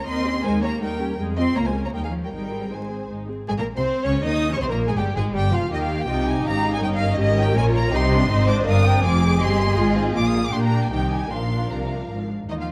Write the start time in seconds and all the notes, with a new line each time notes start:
0.07 D#2 C4 D#4 A#4 D#5 C6
0.25 C#4 G4
0.44 D#2 G#3 D#4 A#4 C5 G#5
0.62 A#3 C#4 G4 C#5 A#5
0.81 D#2 G3 D#4 A#4 G5
1.00 C#4 G4
1.19 F2 G#3 G#4
1.37 C4 F4 D#5 C6
1.56 C#2 A#3 F4 C#5 A#5
1.65 G#3 C5 G#5
1.75 C#4 A#4
1.85 A#3 C#5 A#5
1.94 D#2 G3 A#3 D#4 A#4 G5
2.04 F3 G#4 F5
2.13 C#4 G4
2.23 G3 A#4 G5
2.33 G#1 G3 G#3 D#4 A#4 G5
2.52 C4 G#4
2.72 G#1 G#3 D#4 C5 G#5
2.90 C4 G#4
3.10 G#1 G#3 D#4
3.29 C4 G#4
3.48 G#1 G#2 G#3 G#4 G#5
3.58 A#1 A#2 A#3 A#4 A#5
3.76 C2 C3 C4 C5 C6
4.04 C#2 C#3 C#4 C#5 C#6
4.23 D#2 D#3 D#4 D#5 D#6
4.52 C#3 C#4 C#5 C#6
4.60 C2 C3 C4 C5 C6
4.69 A#1 A#2 A#3 A#4 A#5
4.89 G#2 G#3 G#4 G#5
4.97 G1 G2 G3 G4 G5
5.15 G#1 G#2 G#3 G#4 G#5
5.33 G1 G2 G3 G4 G5
5.52 F1 F2 F3 F4 F5
5.71 D#2 D#3 A#3 G4 D#5 G5
5.81 F5
5.99 G5
6.07 C2 C3 D#4 F4 G4 D#5
6.26 D#4 G#5
6.44 G#1 G#2 C#4 F5 A#5
6.73 G#5
6.82 G1 G2 A#4 D#5 G5
6.93 F5
7.11 D#5
7.18 G#1 G#2 G4 A#4 D#5
7.38 G5
7.55 A#1 A#2 F4 C#5 G#5
7.74 A#5
7.92 C2 C3 C4 D#4 G4 D#5 C6
8.11 D4
8.29 G#1 G#2 C4 D#4 C5
8.48 D4 D6
8.66 G1 G2 C4 A#4 F5 D#6
8.85 G5
9.03 F1 F2 C4 F4 G#4 G#5 D6
9.22 G#4
9.40 G1 G2 C4 G4 D#5 C6
9.60 A#3
9.78 G#1 G#2 G#3 F4
9.97 C4
10.15 A#1 A#2 A#3 F4 F5 D6
10.26 D#6
10.45 D6
10.53 A#2 A#3 D4 G4 G5 C6
10.63 A#5
10.83 G#5
10.92 C2 C3 D#3 D#4 G4 G5
11.12 G#5
11.31 A#1 A#2 F3 D4 A#4 F5 C6
11.71 C2 C3 A#5
12.10 G#1 G#2
12.49 D#2 D#3 A#3 D#4 D#5
12.59 F3 F4 F5